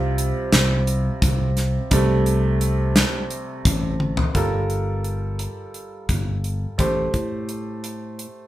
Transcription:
Already playing: C2 C3 G3 F4
0.18 closed hi-hat
0.53 C2, snare, closed hi-hat
0.87 closed hi-hat
1.22 C2, kick, closed hi-hat
1.57 snare, closed hi-hat
1.91 C2 C3 G3 A3, kick, closed hi-hat
2.26 closed hi-hat
2.61 closed hi-hat
2.96 snare, closed hi-hat
3.30 closed hi-hat
3.65 A1, kick, closed hi-hat
4.00 high tom
4.17 floor tom
4.34 G1 G3 F4 A4 A#4, kick, closed hi-hat
4.70 closed hi-hat
5.04 closed hi-hat
5.39 closed hi-hat
5.74 closed hi-hat
6.09 G1, kick, closed hi-hat
6.44 closed hi-hat
6.78 A1 A3 G4 C5, kick, closed hi-hat
7.14 A2, kick, closed hi-hat
7.49 closed hi-hat
7.84 closed hi-hat
8.19 closed hi-hat

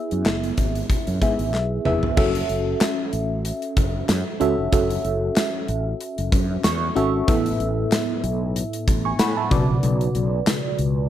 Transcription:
Already playing: B3 E4 G#4 E5
0.11 F#2, closed hi-hat
0.26 F#1, snare, clap
0.44 closed hi-hat
0.57 G#1, kick, closed hi-hat
0.75 closed hi-hat
0.90 kick, closed hi-hat
1.07 F#2, closed hi-hat
1.21 G#2 B3 E4 G#4 E5, kick, closed hi-hat
1.39 G#1, closed hi-hat
1.54 B1, snare, clap
1.85 F1 B3 E4 G#4 E5, mid tom
2.03 floor tom
2.17 F#1 C#4 F#4 A4 E5, kick, crash
2.35 closed hi-hat
2.49 F#1, closed hi-hat
2.81 snare, clap, closed hi-hat, tambourine
3.13 A1, closed hi-hat
3.45 closed hi-hat
3.62 closed hi-hat
3.77 F#1, kick, closed hi-hat
4.09 F#2, snare, clap, closed hi-hat, tambourine
4.40 C#2 C#4 F#4 A4 E5, closed hi-hat
4.58 F1
4.72 F#1 C#4 F#4 A4 E5, kick, closed hi-hat
4.90 closed hi-hat
5.04 F#1, closed hi-hat
5.36 snare, clap, closed hi-hat, tambourine
5.68 A1, closed hi-hat
6.01 closed hi-hat
6.18 F#1, closed hi-hat
6.32 F#2, kick, closed hi-hat
6.64 E2 C#6, snare, clap, closed hi-hat, tambourine
6.95 G#1 C#4 F#4 A4 E5, closed hi-hat
7.28 A1 A2 B3 E4 A4 E5, kick, closed hi-hat
7.46 closed hi-hat
7.60 A1, closed hi-hat
7.92 snare, clap, closed hi-hat, tambourine
8.23 B1, closed hi-hat
8.56 closed hi-hat
8.73 closed hi-hat
8.88 A1, kick, closed hi-hat
9.05 G#5 C#6
9.19 A2 F#5 B5, snare, clap, closed hi-hat, tambourine
9.37 E5 A5
9.51 B1 B2 C#3 F#4 B4 D5, kick, closed hi-hat
9.69 A#1
9.83 B1, closed hi-hat
10.01 closed hi-hat
10.15 B1, closed hi-hat
10.47 snare, clap, closed hi-hat, tambourine
10.79 C#2, closed hi-hat

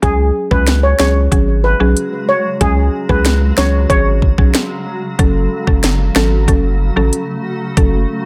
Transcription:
0.02 C#2 C#3 F#3 G#3 C#4 F#4 G#4, kick, closed hi-hat
0.51 C#2 F#3 C#4 G#4 B4, kick
0.67 snare, closed hi-hat
0.83 C#5
0.99 C#2 F#3 C#4 G#4 C#5, snare
1.31 G#1 F#3 C#4 G#4, kick, closed hi-hat
1.64 B4
1.80 B1 F#3 C#4 G#4
1.97 closed hi-hat
2.29 C#5
2.61 C#2 F#3 C#4 G#4, kick, closed hi-hat
3.09 C#2 F#3 C#4 G#4 B4, kick
3.25 snare, closed hi-hat
3.58 C#2 F#3 C#4 G#4 C#5, snare
3.90 G#1 F#3 C#4 G#4 C#5, kick, closed hi-hat
4.22 kick
4.38 B1 F#3 C#4 G#4, kick
4.55 snare, closed hi-hat
5.19 F#1 F#3 A3 C#4 F#4 A4, kick, closed hi-hat
5.67 F#1 F#3 C#4 A4, kick
5.83 snare, closed hi-hat
6.15 G#1 F#3 C#4 A4, snare
6.48 F#1 F#3 C#4 A4, kick, closed hi-hat
6.96 A1 F#3 C#4 A4
7.13 closed hi-hat
7.77 F#1 F#3 C#4 A4, kick, closed hi-hat

